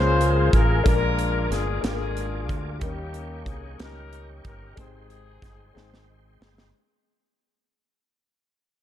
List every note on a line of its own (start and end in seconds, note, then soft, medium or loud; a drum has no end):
0.00 0.49 C#2 loud
0.00 0.87 C#3 medium
0.00 0.84 G#3 medium
0.00 0.84 A#3 medium
0.00 0.87 C#4 medium
0.00 0.83 F4 medium
0.00 0.86 F4 medium
0.00 0.76 G#4 medium
0.00 0.82 G#4 medium
0.00 0.87 A#4 medium
0.00 4.73 A#4 medium
0.00 0.50 C5 loud
0.00 2.77 F5 medium
0.00 2.77 G#5 medium
0.21 closed hi-hat medium
0.53 0.83 A1 loud
0.53 0.86 A#4 loud
0.53 kick loud
0.53 closed hi-hat medium
0.84 1.47 A#1 loud
0.84 1.79 A#2 medium
0.84 1.72 G#3 medium
0.84 1.72 A#3 medium
0.84 1.73 D4 medium
0.84 1.80 D4 medium
0.84 1.73 F4 medium
0.84 1.80 F4 medium
0.84 0.93 G#4 medium
0.84 1.48 A#4 loud
0.84 2.80 D6 medium
0.84 kick loud
0.84 closed hi-hat medium
0.93 1.77 A#4 loud
1.19 closed hi-hat medium
1.50 1.81 G1 loud
1.50 1.84 G#4 loud
1.50 snare soft
1.50 closed hi-hat medium
1.81 2.49 G#1 loud
1.81 2.70 G#3 medium
1.81 2.70 A#3 medium
1.81 2.70 D4 medium
1.81 2.71 F4 medium
1.81 1.91 A4 medium
1.81 snare loud
1.81 closed hi-hat medium
1.86 2.79 D4 medium
1.86 2.78 F4 medium
1.86 2.52 G#4 loud
1.92 2.75 A#4 medium
2.17 closed hi-hat medium
2.49 2.79 D2 loud
2.49 kick medium
2.49 closed hi-hat medium
2.79 3.43 D#2 loud
2.79 3.75 D#3 medium
2.79 3.67 G3 loud
2.79 3.68 A#3 medium
2.79 3.68 C#4 medium
2.79 3.69 D#4 medium
2.79 3.69 A#4 medium
2.79 6.69 D#5 medium
2.79 6.69 G5 medium
2.79 4.75 C#6 medium
2.79 kick loud
2.79 closed hi-hat loud
2.83 3.76 A#3 medium
2.83 3.76 C#4 medium
2.83 3.44 G4 loud
3.14 closed hi-hat medium
3.46 3.76 C2 loud
3.46 3.81 G#4 loud
3.46 kick medium
3.46 closed hi-hat medium
3.78 4.41 C#2 loud
3.78 4.66 G3 medium
3.78 4.66 A#3 medium
3.78 4.67 C#4 medium
3.78 4.74 C#4 medium
3.78 4.67 D#4 medium
3.78 4.74 G4 medium
3.78 4.30 A#4 loud
3.78 4.68 A#4 medium
3.78 snare loud
3.78 closed hi-hat medium
4.13 closed hi-hat medium
4.45 4.75 G1 medium
4.45 4.76 A#4 medium
4.45 kick loud
4.45 closed hi-hat medium
4.76 5.39 G#1 loud
4.76 5.71 C3 medium
4.76 5.64 G#3 medium
4.76 5.64 C4 medium
4.76 6.37 C4 medium
4.76 5.65 D#4 medium
4.76 6.37 D#4 medium
4.76 6.71 G#4 medium
4.76 6.37 G#4 loud
4.76 5.66 C5 medium
4.76 5.65 G5 medium
4.76 6.71 C6 medium
4.76 kick loud
4.76 closed hi-hat medium
5.10 closed hi-hat medium
5.42 5.72 G1 medium
5.42 kick loud
5.42 snare soft
5.42 closed hi-hat medium
5.74 6.37 G#1 loud
5.74 6.62 G#3 medium
5.74 6.62 C4 medium
5.74 6.63 D#4 medium
5.74 6.64 C5 medium
5.74 6.63 G5 medium
5.74 snare medium
5.94 snare medium
6.41 6.71 G1 medium
6.41 snare loud
6.58 snare medium